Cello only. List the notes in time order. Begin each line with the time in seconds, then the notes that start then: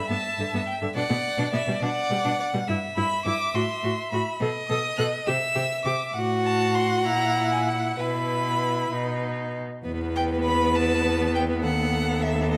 0.09 G2
0.38 G2
0.53 G2
0.82 G2
0.95 B2
1.10 B2
1.38 B2
1.53 B2
1.67 B2
1.81 B2
2.10 B2
2.25 B2
2.54 B2
2.68 G2
2.97 G2
3.25 G2
3.54 A2
3.83 A2
4.12 A2
4.41 B2
4.70 B2
4.99 B2
5.28 C3
5.56 C3
5.85 C3
6.15 A2
7.05 A#2
7.99 B2
8.92 B2
9.85 E2
11.62 D#2